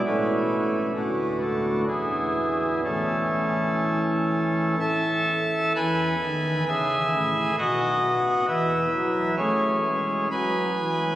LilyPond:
<<
  \new Staff \with { instrumentName = "Pipe organ" } { \time 3/4 \key a \major \tempo 4 = 65 b'4. a'8 gis'4 | a'2 <a' e'' a''>4 | \key e \major <b' gis'' b''>4 <gis' e'' gis''>4 <fis' dis'' fis''>4 | <e' b' e''>4 <cis' gis' cis''>4 <b' gis'' b''>4 | }
  \new Staff \with { instrumentName = "Pipe organ" } { \clef bass \time 3/4 \key a \major <a,, a, a cis' e'>4 <d,, d, a d' fis'>4 <e,, e, e b e'>4 | <a,, a, e cis' e'>2 r4 | \key e \major <e, e>8 dis8 cis8 a,8 <b,, b,>8 b8 | <e, e>8 fis8 a8 gis8 fis8 e8 | }
>>